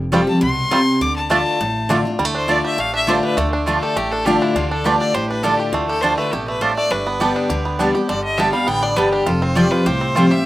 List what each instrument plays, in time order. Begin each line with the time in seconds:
Already playing: upright bass F1, steel-string acoustic guitar F2
0.12 steel-string acoustic guitar F3 G3 C4 G4, five-string banjo G3 C4 F4, mandolin A3 F4 C5 G5
0.27 steel-string acoustic guitar C4 G4, fiddle A5
0.41 upright bass C2, steel-string acoustic guitar B2, fiddle C6
0.71 steel-string acoustic guitar C3, five-string banjo G3 C4 F4, mandolin A3 F4 C5 G5
1.01 upright bass D2, steel-string acoustic guitar D3, fiddle D6
1.16 fiddle A5
1.30 steel-string acoustic guitar D3 A3 D4 F4, mandolin A3 F4 D5 A5, five-string banjo A3 D4, fiddle A5
1.60 upright bass A1, steel-string acoustic guitar A2
1.89 steel-string acoustic guitar D3 A3 D4 F4, mandolin A3 F4 D5 A5, five-string banjo A3 D4
2.05 steel-string acoustic guitar D4 F4
2.19 upright bass D2, steel-string acoustic guitar D3, five-string banjo G3
2.25 five-string banjo A3
2.35 five-string banjo D4, fiddle C5
2.48 steel-string acoustic guitar D3 A3 D4 F4, mandolin A3 F4 D5 A5, five-string banjo A3, fiddle D5
2.65 five-string banjo G4, fiddle E5
2.78 upright bass A1, steel-string acoustic guitar A2, five-string banjo A3, fiddle F5
2.94 five-string banjo D4, fiddle E5
3.07 steel-string acoustic guitar D3 A3 D4 F4, mandolin A3 F4 D5 A5, five-string banjo G4, fiddle C5
3.23 five-string banjo D4, fiddle B4
3.37 upright bass D2, steel-string acoustic guitar D3, five-string banjo A3, fiddle A4
3.53 fiddle D4, five-string banjo D4
3.66 steel-string acoustic guitar D3 A3 D4 F4, mandolin A3 F4 D5 A5, five-string banjo A3, fiddle F4
3.82 five-string banjo G4, fiddle A4
3.96 upright bass A1, steel-string acoustic guitar A2, five-string banjo A3, fiddle G4
4.12 five-string banjo D4, fiddle A4
4.25 steel-string acoustic guitar D3 A3 D4 F4, mandolin A3 F4 D5 A5, fiddle G4, five-string banjo G4
4.42 five-string banjo D4, fiddle E4
4.55 upright bass D2, steel-string acoustic guitar D3, five-string banjo D4, fiddle F4
4.70 five-string banjo D4, fiddle A4
4.84 steel-string acoustic guitar D3 A3 D4 F4, mandolin A3 F4 D5 A5, five-string banjo G4, fiddle B4
5.00 five-string banjo D4, fiddle D5
5.14 upright bass A1, steel-string acoustic guitar A2, five-string banjo G4, fiddle C5
5.30 five-string banjo D4, fiddle B4
5.43 steel-string acoustic guitar D3 A3 D4 F4, mandolin A3 F4 D5 A5, five-string banjo D4, fiddle A4
5.58 fiddle G4, five-string banjo G4
5.72 upright bass D2, steel-string acoustic guitar D3, five-string banjo A3, fiddle F4
5.88 five-string banjo G4, fiddle A4
6.01 steel-string acoustic guitar D3 A3 D4 F4, mandolin A3 F4 D5 A5, five-string banjo D4, fiddle C5
6.17 five-string banjo A3, fiddle B4
6.32 upright bass A1, steel-string acoustic guitar B2, five-string banjo G4, fiddle A4
6.48 five-string banjo A3, fiddle B4
6.61 steel-string acoustic guitar A2, mandolin A3 F4 D5 A5, five-string banjo D4, fiddle C5
6.77 five-string banjo A3, fiddle D5
6.90 upright bass G1, steel-string acoustic guitar G2, five-string banjo D4, fiddle B4
7.07 five-string banjo B3
7.20 steel-string acoustic guitar D3 G3 B3 G4, mandolin B3 G4 D5 A5, five-string banjo G4
7.36 five-string banjo D4
7.50 upright bass D2, steel-string acoustic guitar D3, five-string banjo G4
7.65 five-string banjo B3
7.79 steel-string acoustic guitar D3 G3 B3 G4, mandolin B3 G4 D5 A5, five-string banjo D4
7.95 steel-string acoustic guitar B3 G4, five-string banjo G4
8.09 upright bass G1, steel-string acoustic guitar G2, five-string banjo D3, fiddle D5
8.24 fiddle D#5
8.38 steel-string acoustic guitar D3 G3 B3 G4, mandolin B3 G4 D5 A5, five-string banjo D4, fiddle E5
8.53 five-string banjo G3, steel-string acoustic guitar B3 G4, fiddle F5
8.67 upright bass A1, steel-string acoustic guitar D3, five-string banjo B3, fiddle G5
8.83 five-string banjo D4, fiddle D5
8.96 upright bass G1, steel-string acoustic guitar D3 G3 B3 G4, five-string banjo G3, mandolin B3 G4 D5 A5, fiddle B4
9.12 five-string banjo D4, fiddle G4
9.26 upright bass F1, steel-string acoustic guitar F2, five-string banjo F4, fiddle A4
9.42 five-string banjo C4, fiddle C5
9.55 steel-string acoustic guitar F3 G3 C4 G4, mandolin A3 F4 C5 G5, five-string banjo G4, fiddle D5
9.71 five-string banjo F4, fiddle B4
9.86 upright bass C2, steel-string acoustic guitar A2, five-string banjo G4, fiddle C5
10.01 five-string banjo C4
10.15 steel-string acoustic guitar F3 G3 C4 G4, mandolin A3 F4 C5 G5, five-string banjo F4
10.31 steel-string acoustic guitar C4 G4, five-string banjo G4, fiddle E5